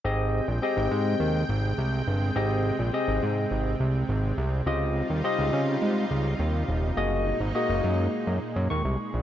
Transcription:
<<
  \new Staff \with { instrumentName = "Tine electric piano" } { \time 4/4 \key aes \major \tempo 4 = 104 <c' g' aes' ees''>8 r8 <c' g' aes' ees''>4. r4. | <c' g' aes' ees''>8 r8 <c' g' aes' ees''>4. r4. | <c' f' g' ees''>8 r8 <c' f' g' ees''>4. r4. | <bes ges' aes' ees''>8 r8 <bes ges' aes' ees''>4. r8 des'''4 | }
  \new Staff \with { instrumentName = "Analog synth pad" } { \clef bass \time 4/4 \key aes \major <c aes g''>1~ | <c aes g''>1 | <g ees' f'>1 | <bes, aes ees'>1 | }
  \new Staff \with { instrumentName = "Analog synth bass" } { \clef bass \time 4/4 \key aes \major aes,,8. bes,,16 r16 aes,,16 aes,8 ees,8 aes,,8 c,8 g,,8 | aes,,8. bes,,16 r16 aes,,16 aes,8 aes,,8 c,8 aes,,8 c,8 | des,8. ees,16 r16 des,16 des8 aes,8 des,8 ees,8 ees,,8 | ges,,8. aes,,16 r16 ges,,16 ges,8 r16 ges,16 r16 ges,16 ees,16 c,16 r16 bes,,16 | }
>>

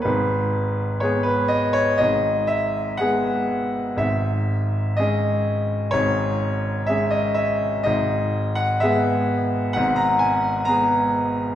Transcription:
<<
  \new Staff \with { instrumentName = "Grand piano" } { \time 4/4 \key gis \minor \tempo 4 = 62 b'4 cis''16 b'16 dis''16 cis''16 dis''8 e''8 fis''4 | e''4 dis''4 cis''4 e''16 dis''16 e''8 | dis''8. fis''16 e''4 fis''16 ais''16 gis''8 ais''4 | }
  \new Staff \with { instrumentName = "Grand piano" } { \clef bass \time 4/4 \key gis \minor <gis,, gis,>4 <gis b gis'>4 <gis,, gis,>4 <gis b gis'>4 | <gis,, gis,>4 <gis cis' gis'>4 <gis,, gis,>4 <gis cis' gis'>4 | <gis,, gis,>4 <gis b gis'>4 <gis,, gis,>4 <gis b gis'>4 | }
>>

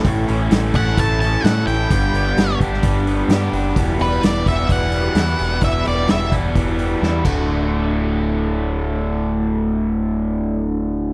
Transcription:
<<
  \new Staff \with { instrumentName = "Lead electric guitar" } { \time 4/4 \key d \major \tempo 4 = 129 r4. fis''8 a''8 a''8 fis''8 g''8~ | g''4. r2 r8 | r8 b'8 d''8 e''8 fis''2 | e''8 d''8 e''8 r2 r8 |
r1 | r1 | }
  \new Staff \with { instrumentName = "Overdriven electric guitar" } { \time 4/4 \key d \major a,8 cis'8 a8 e'8 a8 cis'8 a'8 e'8 | g,8 b8 g8 d'8 g8 b8 g'8 d'8 | e,8 g8 e8 b8 e8 g8 e'8 b8 | e,8 g8 e8 b8 e8 g8 e'8 <d, a, d a fis'>8~ |
<d, a, d a fis'>1~ | <d, a, d a fis'>1 | }
  \new Staff \with { instrumentName = "Overdriven electric guitar" } { \clef bass \time 4/4 \key d \major <a, e a cis' e' a'>4. <a, e a cis' e' a'>4. <a, e a cis' e' a'>4 | <g, d g b d' g'>4. <g, d g b d' g'>4. <g, d g b d' g'>4 | <e, b, e g b e'>4. <e, b, e g b e'>4. <e, b, e g b e'>4 | <e, b, e g b e'>4. <e, b, e g b e'>4. <e, b, e g b e'>8 <d, a, d a fis'>8~ |
<d, a, d a fis'>1~ | <d, a, d a fis'>1 | }
  \new Staff \with { instrumentName = "Picked electric bass" } { \clef bass \time 4/4 \key d \major a,,8 a,,8 a,,8 a,,8 a,,4 a,8 a,,8 | g,,8 g,,8 g,,8 g,,8 g,,4 g,8 fis,,8 | e,,8 e,,8 e,,8 e,,8 e,,4 e,8 e,,8 | e,,8 e,,8 e,,8 e,,8 e,,4 e,8 d,,8~ |
d,,1~ | d,,1 | }
  \new DrumStaff \with { instrumentName = "Drums" } \drummode { \time 4/4 <hho bd>8 hho8 <hho sn>8 <hho bd>16 sn16 <hho bd>8 hho8 <hho sn>8 hho8 | <hho bd>8 hho8 <hho sn>8 <hho bd>16 sn16 <hho bd>8 hho8 <hho sn>8 hho8 | <hho bd>8 hho8 <hho sn>8 <hho bd>8 <hho bd>8 hho8 <hho sn>8 hho8 | <hho bd>8 hho8 <hho sn>8 <hho bd>8 <hho bd>8 hho8 sn8 <cymc bd>8 |
r4 r4 r4 r4 | r4 r4 r4 r4 | }
>>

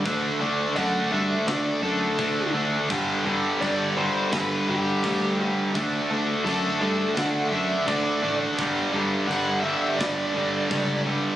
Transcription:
<<
  \new Staff \with { instrumentName = "Lead electric guitar" } { \time 4/4 \key d \mixolydian \tempo 4 = 84 r4 fis''8 e''8 d''8 a'4 r8 | r4 d''8 c''8 b'8 g'4 r8 | r4 a'4 fis''8 e''8 d''8. r16 | r4 fis''8 e''8 d''4. r8 | }
  \new Staff \with { instrumentName = "Distorted electric guitar" } { \clef bass \time 4/4 \key d \mixolydian <d a d'>8 <d a d'>8 <d a d'>8 <d a d'>8 <d a d'>8 <d a d'>8 <d a d'>8 <d a d'>8 | <g, d g>8 <g, d g>8 <g, d g>8 <g, d g>8 <g, d g>8 <g, d g>8 <g, d g>8 <g, d g>8 | <d a d'>8 <d a d'>8 <d a d'>8 <d a d'>8 <d a d'>8 <d a d'>8 <d a d'>8 <d a d'>8 | <g, d g>8 <g, d g>8 <g, d g>8 <g, d g>8 <g, d g>8 <g, d g>8 <g, d g>8 <g, d g>8 | }
  \new Staff \with { instrumentName = "Distorted electric guitar" } { \clef bass \time 4/4 \key d \mixolydian <d a d'>8 <d a d'>8 <d a d'>8 <d a d'>8 <d a d'>8 <d a d'>8 <d a d'>8 <d a d'>8 | <g, d g>8 <g, d g>8 <g, d g>8 <g, d g>8 <g, d g>8 <g, d g>8 <g, d g>8 <g, d g>8 | <d a d'>8 <d a d'>8 <d a d'>8 <d a d'>8 <d a d'>8 <d a d'>8 <d a d'>8 <d a d'>8 | <g, d g>8 <g, d g>8 <g, d g>8 <g, d g>8 <g, d g>8 <g, d g>8 <g, d g>8 <g, d g>8 | }
  \new Staff \with { instrumentName = "Distorted electric guitar" } { \clef bass \time 4/4 \key d \mixolydian <d a d'>8 <d a d'>8 <d a d'>8 <d a d'>8 <d a d'>8 <d a d'>8 <d a d'>8 <d a d'>8 | <g, d g>8 <g, d g>8 <g, d g>8 <g, d g>8 <g, d g>8 <g, d g>8 <g, d g>8 <g, d g>8 | <d a d'>8 <d a d'>8 <d a d'>8 <d a d'>8 <d a d'>8 <d a d'>8 <d a d'>8 <d a d'>8 | <g, d g>8 <g, d g>8 <g, d g>8 <g, d g>8 <g, d g>8 <g, d g>8 <g, d g>8 <g, d g>8 | }
  \new Staff \with { instrumentName = "Picked electric bass" } { \clef bass \time 4/4 \key d \mixolydian d,8 d,8 fis,8 g,8 d8 fis,8 d,8 d,8 | g,,8 g,,8 g,,4 g,,8 g,,8 d,4 | d,8 d,8 fis,8 g,8 d8 fis,8 d,8 a,,8 | g,,8 g,,8 g,,4 g,,8 g,,8 cis,4 | }
  \new DrumStaff \with { instrumentName = "Drums" } \drummode { \time 4/4 <cymc bd>4 cymc4 <cymc sn>4 <cymc bd>4 | <cymc bd>4 cymc4 <cymc sn>4 <cymc bd>4 | <cymc bd>4 cymc4 <cymc sn>4 <cymc bd>4 | <cymc bd>4 cymc4 <cymc sn>4 <cymc bd>4 | }
>>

